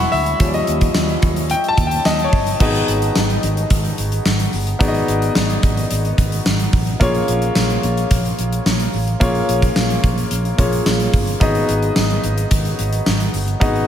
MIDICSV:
0, 0, Header, 1, 4, 480
1, 0, Start_track
1, 0, Tempo, 550459
1, 351, Time_signature, 4, 2, 24, 8
1, 12095, End_track
2, 0, Start_track
2, 0, Title_t, "Grand piano"
2, 0, Program_c, 0, 0
2, 0, Control_c, 0, 64, 127
2, 0, Note_on_c, 0, 54, 60
2, 0, Note_on_c, 0, 56, 52
2, 0, Note_on_c, 0, 64, 65
2, 0, Note_on_c, 0, 76, 96
2, 0, Note_on_c, 0, 78, 89
2, 0, Note_on_c, 0, 80, 96
2, 0, Note_on_c, 0, 83, 100
2, 0, Note_on_c, 0, 85, 112
2, 103, Note_off_c, 0, 76, 0
2, 103, Note_on_c, 0, 76, 95
2, 112, Note_off_c, 0, 78, 0
2, 314, Note_off_c, 0, 54, 0
2, 317, Note_off_c, 0, 56, 0
2, 319, Note_off_c, 0, 64, 0
2, 347, Note_on_c, 0, 53, 58
2, 350, Note_on_c, 0, 55, 53
2, 357, Note_on_c, 0, 61, 65
2, 363, Control_c, 0, 64, 0
2, 365, Note_off_c, 0, 80, 0
2, 366, Note_off_c, 0, 85, 0
2, 368, Note_off_c, 0, 83, 0
2, 412, Note_on_c, 0, 74, 61
2, 415, Note_off_c, 0, 76, 0
2, 472, Note_off_c, 0, 74, 0
2, 472, Note_on_c, 0, 75, 92
2, 517, Control_c, 0, 64, 127
2, 918, Note_off_c, 0, 75, 0
2, 1315, Note_on_c, 0, 79, 106
2, 1469, Note_on_c, 0, 81, 103
2, 1478, Note_off_c, 0, 79, 0
2, 1630, Note_on_c, 0, 79, 96
2, 1635, Note_off_c, 0, 81, 0
2, 1794, Note_on_c, 0, 75, 94
2, 1795, Note_off_c, 0, 79, 0
2, 1956, Note_on_c, 0, 73, 79
2, 1957, Note_off_c, 0, 75, 0
2, 2234, Note_off_c, 0, 53, 0
2, 2235, Note_off_c, 0, 55, 0
2, 2239, Note_off_c, 0, 61, 0
2, 2251, Note_off_c, 0, 73, 0
2, 2265, Note_on_c, 0, 59, 67
2, 2271, Note_on_c, 0, 63, 64
2, 2275, Note_on_c, 0, 66, 61
2, 2281, Note_on_c, 0, 68, 62
2, 2284, Control_c, 0, 64, 0
2, 2286, Note_on_c, 0, 75, 75
2, 2450, Control_c, 0, 64, 127
2, 4153, Note_off_c, 0, 59, 0
2, 4156, Note_off_c, 0, 63, 0
2, 4158, Note_off_c, 0, 66, 0
2, 4161, Note_off_c, 0, 68, 0
2, 4163, Note_off_c, 0, 75, 0
2, 4178, Note_on_c, 0, 59, 84
2, 4183, Note_on_c, 0, 63, 76
2, 4189, Note_on_c, 0, 66, 76
2, 4195, Note_on_c, 0, 68, 74
2, 4199, Note_on_c, 0, 74, 72
2, 4251, Note_off_c, 0, 74, 0
2, 4256, Note_on_c, 0, 75, 96
2, 6069, Note_off_c, 0, 59, 0
2, 6072, Note_off_c, 0, 63, 0
2, 6075, Note_off_c, 0, 66, 0
2, 6078, Note_off_c, 0, 68, 0
2, 6102, Note_on_c, 0, 58, 82
2, 6109, Note_off_c, 0, 75, 0
2, 6109, Note_on_c, 0, 61, 74
2, 6113, Note_on_c, 0, 65, 78
2, 6119, Note_on_c, 0, 68, 74
2, 6123, Control_c, 0, 64, 0
2, 6124, Note_on_c, 0, 73, 94
2, 6261, Control_c, 0, 64, 127
2, 7992, Note_off_c, 0, 58, 0
2, 7995, Note_off_c, 0, 61, 0
2, 7997, Note_off_c, 0, 65, 0
2, 8000, Note_off_c, 0, 68, 0
2, 8003, Note_off_c, 0, 73, 0
2, 8023, Note_on_c, 0, 58, 86
2, 8029, Note_on_c, 0, 61, 71
2, 8035, Note_on_c, 0, 65, 74
2, 8039, Note_on_c, 0, 68, 74
2, 8044, Note_on_c, 0, 73, 91
2, 9203, Note_off_c, 0, 58, 0
2, 9206, Note_off_c, 0, 61, 0
2, 9209, Note_off_c, 0, 65, 0
2, 9211, Note_off_c, 0, 68, 0
2, 9214, Note_off_c, 0, 73, 0
2, 9228, Note_on_c, 0, 58, 61
2, 9229, Note_on_c, 0, 61, 56
2, 9233, Note_on_c, 0, 65, 54
2, 9236, Note_on_c, 0, 68, 59
2, 9238, Note_on_c, 0, 73, 66
2, 9942, Note_on_c, 0, 59, 83
2, 9945, Note_off_c, 0, 68, 0
2, 9948, Note_on_c, 0, 63, 73
2, 9949, Note_off_c, 0, 58, 0
2, 9950, Note_off_c, 0, 61, 0
2, 9952, Note_off_c, 0, 65, 0
2, 9953, Note_on_c, 0, 66, 73
2, 9954, Note_off_c, 0, 73, 0
2, 9958, Note_on_c, 0, 68, 74
2, 9960, Control_c, 0, 64, 0
2, 9962, Note_on_c, 0, 75, 95
2, 10139, Control_c, 0, 64, 127
2, 11832, Note_off_c, 0, 59, 0
2, 11834, Note_off_c, 0, 63, 0
2, 11837, Note_off_c, 0, 66, 0
2, 11839, Note_off_c, 0, 68, 0
2, 11841, Note_off_c, 0, 75, 0
2, 11860, Note_on_c, 0, 59, 82
2, 11864, Note_on_c, 0, 63, 75
2, 11870, Note_on_c, 0, 66, 76
2, 11875, Note_on_c, 0, 68, 76
2, 11880, Note_on_c, 0, 75, 93
2, 12095, Note_off_c, 0, 59, 0
2, 12095, Note_off_c, 0, 63, 0
2, 12095, Note_off_c, 0, 66, 0
2, 12095, Note_off_c, 0, 68, 0
2, 12095, Note_off_c, 0, 75, 0
2, 12095, End_track
3, 0, Start_track
3, 0, Title_t, "Fretless electric bass"
3, 0, Program_c, 1, 35
3, 113, Note_on_c, 1, 38, 102
3, 285, Note_off_c, 1, 38, 0
3, 349, Note_on_c, 1, 39, 106
3, 522, Note_off_c, 1, 39, 0
3, 591, Note_on_c, 1, 39, 109
3, 763, Note_off_c, 1, 39, 0
3, 831, Note_on_c, 1, 39, 98
3, 1004, Note_off_c, 1, 39, 0
3, 1070, Note_on_c, 1, 39, 106
3, 1329, Note_off_c, 1, 39, 0
3, 1549, Note_on_c, 1, 39, 101
3, 1723, Note_off_c, 1, 39, 0
3, 1793, Note_on_c, 1, 39, 101
3, 1965, Note_off_c, 1, 39, 0
3, 2031, Note_on_c, 1, 31, 99
3, 2204, Note_off_c, 1, 31, 0
3, 2270, Note_on_c, 1, 32, 101
3, 2443, Note_off_c, 1, 32, 0
3, 2513, Note_on_c, 1, 32, 103
3, 2685, Note_off_c, 1, 32, 0
3, 2752, Note_on_c, 1, 32, 95
3, 2925, Note_off_c, 1, 32, 0
3, 2992, Note_on_c, 1, 32, 113
3, 3164, Note_off_c, 1, 32, 0
3, 3233, Note_on_c, 1, 32, 114
3, 3405, Note_off_c, 1, 32, 0
3, 3470, Note_on_c, 1, 32, 103
3, 3643, Note_off_c, 1, 32, 0
3, 3710, Note_on_c, 1, 32, 100
3, 3883, Note_off_c, 1, 32, 0
3, 3951, Note_on_c, 1, 31, 98
3, 4124, Note_off_c, 1, 31, 0
3, 4190, Note_on_c, 1, 32, 119
3, 4363, Note_off_c, 1, 32, 0
3, 4429, Note_on_c, 1, 32, 106
3, 4602, Note_off_c, 1, 32, 0
3, 4671, Note_on_c, 1, 32, 97
3, 4844, Note_off_c, 1, 32, 0
3, 4912, Note_on_c, 1, 32, 111
3, 5084, Note_off_c, 1, 32, 0
3, 5152, Note_on_c, 1, 32, 106
3, 5325, Note_off_c, 1, 32, 0
3, 5389, Note_on_c, 1, 32, 107
3, 5562, Note_off_c, 1, 32, 0
3, 5633, Note_on_c, 1, 32, 107
3, 5805, Note_off_c, 1, 32, 0
3, 5871, Note_on_c, 1, 33, 103
3, 6043, Note_off_c, 1, 33, 0
3, 6110, Note_on_c, 1, 34, 114
3, 6283, Note_off_c, 1, 34, 0
3, 6353, Note_on_c, 1, 34, 105
3, 6525, Note_off_c, 1, 34, 0
3, 6592, Note_on_c, 1, 34, 97
3, 6764, Note_off_c, 1, 34, 0
3, 6832, Note_on_c, 1, 34, 107
3, 7004, Note_off_c, 1, 34, 0
3, 7072, Note_on_c, 1, 34, 108
3, 7244, Note_off_c, 1, 34, 0
3, 7312, Note_on_c, 1, 34, 98
3, 7484, Note_off_c, 1, 34, 0
3, 7552, Note_on_c, 1, 34, 109
3, 7724, Note_off_c, 1, 34, 0
3, 7793, Note_on_c, 1, 33, 90
3, 7965, Note_off_c, 1, 33, 0
3, 8031, Note_on_c, 1, 34, 104
3, 8204, Note_off_c, 1, 34, 0
3, 8274, Note_on_c, 1, 34, 105
3, 8445, Note_off_c, 1, 34, 0
3, 8513, Note_on_c, 1, 34, 96
3, 8685, Note_off_c, 1, 34, 0
3, 8751, Note_on_c, 1, 34, 105
3, 8924, Note_off_c, 1, 34, 0
3, 8991, Note_on_c, 1, 34, 109
3, 9163, Note_off_c, 1, 34, 0
3, 9230, Note_on_c, 1, 34, 103
3, 9403, Note_off_c, 1, 34, 0
3, 9471, Note_on_c, 1, 34, 99
3, 9644, Note_off_c, 1, 34, 0
3, 9710, Note_on_c, 1, 31, 100
3, 9883, Note_off_c, 1, 31, 0
3, 9951, Note_on_c, 1, 32, 101
3, 10124, Note_off_c, 1, 32, 0
3, 10189, Note_on_c, 1, 32, 102
3, 10363, Note_off_c, 1, 32, 0
3, 10432, Note_on_c, 1, 32, 101
3, 10604, Note_off_c, 1, 32, 0
3, 10670, Note_on_c, 1, 32, 112
3, 10843, Note_off_c, 1, 32, 0
3, 10911, Note_on_c, 1, 32, 112
3, 11084, Note_off_c, 1, 32, 0
3, 11152, Note_on_c, 1, 32, 98
3, 11324, Note_off_c, 1, 32, 0
3, 11392, Note_on_c, 1, 32, 103
3, 11565, Note_off_c, 1, 32, 0
3, 11629, Note_on_c, 1, 31, 94
3, 11803, Note_off_c, 1, 31, 0
3, 11871, Note_on_c, 1, 32, 110
3, 12044, Note_off_c, 1, 32, 0
3, 12095, End_track
4, 0, Start_track
4, 0, Title_t, "Drums"
4, 108, Note_on_c, 9, 46, 71
4, 196, Note_off_c, 9, 46, 0
4, 229, Note_on_c, 9, 42, 52
4, 316, Note_off_c, 9, 42, 0
4, 347, Note_on_c, 9, 42, 93
4, 349, Note_on_c, 9, 36, 117
4, 435, Note_off_c, 9, 42, 0
4, 436, Note_off_c, 9, 36, 0
4, 467, Note_on_c, 9, 42, 47
4, 555, Note_off_c, 9, 42, 0
4, 587, Note_on_c, 9, 42, 85
4, 674, Note_off_c, 9, 42, 0
4, 706, Note_on_c, 9, 42, 61
4, 710, Note_on_c, 9, 36, 82
4, 793, Note_off_c, 9, 42, 0
4, 797, Note_off_c, 9, 36, 0
4, 823, Note_on_c, 9, 54, 84
4, 824, Note_on_c, 9, 38, 116
4, 910, Note_off_c, 9, 54, 0
4, 911, Note_off_c, 9, 38, 0
4, 948, Note_on_c, 9, 42, 44
4, 1036, Note_off_c, 9, 42, 0
4, 1067, Note_on_c, 9, 42, 74
4, 1070, Note_on_c, 9, 36, 102
4, 1154, Note_off_c, 9, 42, 0
4, 1157, Note_off_c, 9, 36, 0
4, 1189, Note_on_c, 9, 42, 55
4, 1276, Note_off_c, 9, 42, 0
4, 1305, Note_on_c, 9, 42, 89
4, 1393, Note_off_c, 9, 42, 0
4, 1429, Note_on_c, 9, 42, 46
4, 1516, Note_off_c, 9, 42, 0
4, 1547, Note_on_c, 9, 42, 78
4, 1549, Note_on_c, 9, 36, 88
4, 1634, Note_off_c, 9, 42, 0
4, 1636, Note_off_c, 9, 36, 0
4, 1667, Note_on_c, 9, 42, 63
4, 1755, Note_off_c, 9, 42, 0
4, 1789, Note_on_c, 9, 54, 74
4, 1790, Note_on_c, 9, 38, 112
4, 1876, Note_off_c, 9, 54, 0
4, 1877, Note_off_c, 9, 38, 0
4, 1909, Note_on_c, 9, 42, 54
4, 1996, Note_off_c, 9, 42, 0
4, 2030, Note_on_c, 9, 36, 97
4, 2031, Note_on_c, 9, 46, 71
4, 2117, Note_off_c, 9, 36, 0
4, 2118, Note_off_c, 9, 46, 0
4, 2150, Note_on_c, 9, 42, 56
4, 2238, Note_off_c, 9, 42, 0
4, 2271, Note_on_c, 9, 36, 125
4, 2271, Note_on_c, 9, 49, 108
4, 2358, Note_off_c, 9, 36, 0
4, 2358, Note_off_c, 9, 49, 0
4, 2394, Note_on_c, 9, 42, 47
4, 2481, Note_off_c, 9, 42, 0
4, 2513, Note_on_c, 9, 42, 85
4, 2600, Note_off_c, 9, 42, 0
4, 2633, Note_on_c, 9, 42, 61
4, 2720, Note_off_c, 9, 42, 0
4, 2750, Note_on_c, 9, 54, 87
4, 2751, Note_on_c, 9, 38, 117
4, 2837, Note_off_c, 9, 54, 0
4, 2839, Note_off_c, 9, 38, 0
4, 2877, Note_on_c, 9, 42, 47
4, 2964, Note_off_c, 9, 42, 0
4, 2991, Note_on_c, 9, 42, 74
4, 3078, Note_off_c, 9, 42, 0
4, 3114, Note_on_c, 9, 42, 55
4, 3201, Note_off_c, 9, 42, 0
4, 3230, Note_on_c, 9, 42, 99
4, 3232, Note_on_c, 9, 36, 102
4, 3317, Note_off_c, 9, 42, 0
4, 3319, Note_off_c, 9, 36, 0
4, 3354, Note_on_c, 9, 42, 49
4, 3441, Note_off_c, 9, 42, 0
4, 3471, Note_on_c, 9, 42, 81
4, 3559, Note_off_c, 9, 42, 0
4, 3592, Note_on_c, 9, 42, 64
4, 3679, Note_off_c, 9, 42, 0
4, 3710, Note_on_c, 9, 54, 77
4, 3711, Note_on_c, 9, 38, 113
4, 3797, Note_off_c, 9, 54, 0
4, 3798, Note_off_c, 9, 38, 0
4, 3829, Note_on_c, 9, 42, 56
4, 3917, Note_off_c, 9, 42, 0
4, 3950, Note_on_c, 9, 46, 72
4, 4037, Note_off_c, 9, 46, 0
4, 4070, Note_on_c, 9, 42, 56
4, 4158, Note_off_c, 9, 42, 0
4, 4190, Note_on_c, 9, 36, 123
4, 4192, Note_on_c, 9, 42, 88
4, 4278, Note_off_c, 9, 36, 0
4, 4279, Note_off_c, 9, 42, 0
4, 4312, Note_on_c, 9, 42, 47
4, 4399, Note_off_c, 9, 42, 0
4, 4433, Note_on_c, 9, 42, 86
4, 4520, Note_off_c, 9, 42, 0
4, 4552, Note_on_c, 9, 42, 65
4, 4639, Note_off_c, 9, 42, 0
4, 4668, Note_on_c, 9, 54, 87
4, 4669, Note_on_c, 9, 38, 127
4, 4755, Note_off_c, 9, 54, 0
4, 4756, Note_off_c, 9, 38, 0
4, 4793, Note_on_c, 9, 42, 45
4, 4880, Note_off_c, 9, 42, 0
4, 4911, Note_on_c, 9, 36, 101
4, 4911, Note_on_c, 9, 42, 78
4, 4998, Note_off_c, 9, 42, 0
4, 4999, Note_off_c, 9, 36, 0
4, 5034, Note_on_c, 9, 42, 57
4, 5121, Note_off_c, 9, 42, 0
4, 5150, Note_on_c, 9, 42, 96
4, 5237, Note_off_c, 9, 42, 0
4, 5274, Note_on_c, 9, 42, 46
4, 5361, Note_off_c, 9, 42, 0
4, 5390, Note_on_c, 9, 36, 90
4, 5392, Note_on_c, 9, 42, 82
4, 5477, Note_off_c, 9, 36, 0
4, 5479, Note_off_c, 9, 42, 0
4, 5512, Note_on_c, 9, 42, 66
4, 5599, Note_off_c, 9, 42, 0
4, 5631, Note_on_c, 9, 54, 73
4, 5632, Note_on_c, 9, 38, 116
4, 5718, Note_off_c, 9, 54, 0
4, 5719, Note_off_c, 9, 38, 0
4, 5749, Note_on_c, 9, 42, 57
4, 5837, Note_off_c, 9, 42, 0
4, 5870, Note_on_c, 9, 36, 100
4, 5870, Note_on_c, 9, 46, 70
4, 5957, Note_off_c, 9, 36, 0
4, 5957, Note_off_c, 9, 46, 0
4, 5991, Note_on_c, 9, 42, 55
4, 6078, Note_off_c, 9, 42, 0
4, 6110, Note_on_c, 9, 36, 121
4, 6111, Note_on_c, 9, 42, 89
4, 6197, Note_off_c, 9, 36, 0
4, 6198, Note_off_c, 9, 42, 0
4, 6231, Note_on_c, 9, 42, 49
4, 6318, Note_off_c, 9, 42, 0
4, 6350, Note_on_c, 9, 42, 87
4, 6437, Note_off_c, 9, 42, 0
4, 6469, Note_on_c, 9, 42, 66
4, 6556, Note_off_c, 9, 42, 0
4, 6586, Note_on_c, 9, 54, 84
4, 6588, Note_on_c, 9, 38, 123
4, 6674, Note_off_c, 9, 54, 0
4, 6675, Note_off_c, 9, 38, 0
4, 6714, Note_on_c, 9, 42, 47
4, 6801, Note_off_c, 9, 42, 0
4, 6831, Note_on_c, 9, 42, 74
4, 6918, Note_off_c, 9, 42, 0
4, 6954, Note_on_c, 9, 42, 59
4, 7041, Note_off_c, 9, 42, 0
4, 7069, Note_on_c, 9, 42, 99
4, 7072, Note_on_c, 9, 36, 101
4, 7156, Note_off_c, 9, 42, 0
4, 7159, Note_off_c, 9, 36, 0
4, 7194, Note_on_c, 9, 42, 47
4, 7281, Note_off_c, 9, 42, 0
4, 7313, Note_on_c, 9, 42, 77
4, 7400, Note_off_c, 9, 42, 0
4, 7434, Note_on_c, 9, 42, 66
4, 7521, Note_off_c, 9, 42, 0
4, 7551, Note_on_c, 9, 54, 74
4, 7552, Note_on_c, 9, 38, 109
4, 7638, Note_off_c, 9, 54, 0
4, 7640, Note_off_c, 9, 38, 0
4, 7670, Note_on_c, 9, 42, 57
4, 7757, Note_off_c, 9, 42, 0
4, 7791, Note_on_c, 9, 46, 71
4, 7879, Note_off_c, 9, 46, 0
4, 7913, Note_on_c, 9, 42, 55
4, 8000, Note_off_c, 9, 42, 0
4, 8032, Note_on_c, 9, 36, 117
4, 8033, Note_on_c, 9, 42, 86
4, 8119, Note_off_c, 9, 36, 0
4, 8120, Note_off_c, 9, 42, 0
4, 8153, Note_on_c, 9, 42, 50
4, 8240, Note_off_c, 9, 42, 0
4, 8274, Note_on_c, 9, 42, 89
4, 8362, Note_off_c, 9, 42, 0
4, 8392, Note_on_c, 9, 36, 88
4, 8392, Note_on_c, 9, 42, 62
4, 8479, Note_off_c, 9, 36, 0
4, 8479, Note_off_c, 9, 42, 0
4, 8509, Note_on_c, 9, 54, 82
4, 8510, Note_on_c, 9, 38, 125
4, 8596, Note_off_c, 9, 54, 0
4, 8598, Note_off_c, 9, 38, 0
4, 8635, Note_on_c, 9, 42, 49
4, 8722, Note_off_c, 9, 42, 0
4, 8752, Note_on_c, 9, 36, 103
4, 8752, Note_on_c, 9, 42, 77
4, 8839, Note_off_c, 9, 36, 0
4, 8839, Note_off_c, 9, 42, 0
4, 8874, Note_on_c, 9, 42, 59
4, 8961, Note_off_c, 9, 42, 0
4, 8990, Note_on_c, 9, 42, 98
4, 9077, Note_off_c, 9, 42, 0
4, 9114, Note_on_c, 9, 42, 47
4, 9201, Note_off_c, 9, 42, 0
4, 9230, Note_on_c, 9, 36, 96
4, 9231, Note_on_c, 9, 42, 82
4, 9317, Note_off_c, 9, 36, 0
4, 9319, Note_off_c, 9, 42, 0
4, 9352, Note_on_c, 9, 42, 63
4, 9440, Note_off_c, 9, 42, 0
4, 9470, Note_on_c, 9, 54, 73
4, 9471, Note_on_c, 9, 38, 110
4, 9557, Note_off_c, 9, 54, 0
4, 9559, Note_off_c, 9, 38, 0
4, 9589, Note_on_c, 9, 42, 56
4, 9677, Note_off_c, 9, 42, 0
4, 9710, Note_on_c, 9, 36, 98
4, 9711, Note_on_c, 9, 46, 69
4, 9797, Note_off_c, 9, 36, 0
4, 9798, Note_off_c, 9, 46, 0
4, 9831, Note_on_c, 9, 42, 60
4, 9918, Note_off_c, 9, 42, 0
4, 9950, Note_on_c, 9, 36, 122
4, 9950, Note_on_c, 9, 42, 87
4, 10037, Note_off_c, 9, 36, 0
4, 10037, Note_off_c, 9, 42, 0
4, 10070, Note_on_c, 9, 42, 49
4, 10157, Note_off_c, 9, 42, 0
4, 10192, Note_on_c, 9, 42, 84
4, 10279, Note_off_c, 9, 42, 0
4, 10311, Note_on_c, 9, 42, 58
4, 10399, Note_off_c, 9, 42, 0
4, 10427, Note_on_c, 9, 54, 81
4, 10429, Note_on_c, 9, 38, 117
4, 10515, Note_off_c, 9, 54, 0
4, 10516, Note_off_c, 9, 38, 0
4, 10552, Note_on_c, 9, 42, 45
4, 10639, Note_off_c, 9, 42, 0
4, 10669, Note_on_c, 9, 42, 77
4, 10757, Note_off_c, 9, 42, 0
4, 10792, Note_on_c, 9, 42, 58
4, 10879, Note_off_c, 9, 42, 0
4, 10908, Note_on_c, 9, 42, 101
4, 10911, Note_on_c, 9, 36, 97
4, 10995, Note_off_c, 9, 42, 0
4, 10998, Note_off_c, 9, 36, 0
4, 11033, Note_on_c, 9, 42, 49
4, 11120, Note_off_c, 9, 42, 0
4, 11151, Note_on_c, 9, 42, 81
4, 11238, Note_off_c, 9, 42, 0
4, 11271, Note_on_c, 9, 42, 66
4, 11358, Note_off_c, 9, 42, 0
4, 11390, Note_on_c, 9, 54, 71
4, 11392, Note_on_c, 9, 38, 118
4, 11478, Note_off_c, 9, 54, 0
4, 11479, Note_off_c, 9, 38, 0
4, 11512, Note_on_c, 9, 42, 54
4, 11599, Note_off_c, 9, 42, 0
4, 11631, Note_on_c, 9, 46, 68
4, 11718, Note_off_c, 9, 46, 0
4, 11752, Note_on_c, 9, 42, 58
4, 11840, Note_off_c, 9, 42, 0
4, 11871, Note_on_c, 9, 36, 123
4, 11872, Note_on_c, 9, 42, 86
4, 11958, Note_off_c, 9, 36, 0
4, 11960, Note_off_c, 9, 42, 0
4, 11994, Note_on_c, 9, 42, 47
4, 12081, Note_off_c, 9, 42, 0
4, 12095, End_track
0, 0, End_of_file